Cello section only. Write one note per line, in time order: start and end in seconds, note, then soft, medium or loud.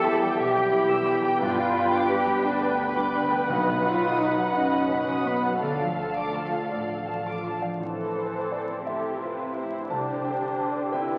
0.00 0.38 A4 loud
0.39 1.41 G4 medium
1.41 2.09 F4 loud
2.10 2.45 G4 medium
2.45 2.80 D4 medium
3.49 3.82 B3 medium
3.84 4.19 F4 medium
4.19 4.54 D#4 medium
4.54 5.26 C#4 medium
5.26 5.62 B3 medium
5.63 6.69 A3 medium
7.81 8.83 A4 soft
8.87 9.22 G4 soft
9.23 9.57 F4 soft
9.57 9.91 E4 soft
9.92 10.94 D4 soft
10.94 11.18 E4 soft